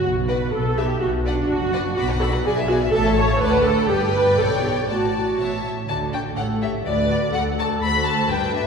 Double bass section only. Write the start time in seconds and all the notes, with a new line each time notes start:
0.05 B1
0.53 B1
1.01 B1
1.50 F#1
1.97 B1
2.44 B1
2.92 A1
3.40 D2
3.89 G1
4.38 B1
4.88 A1
5.38 A1
5.88 D2
6.36 A1
6.85 D2
7.34 D2
7.82 D2
8.30 G1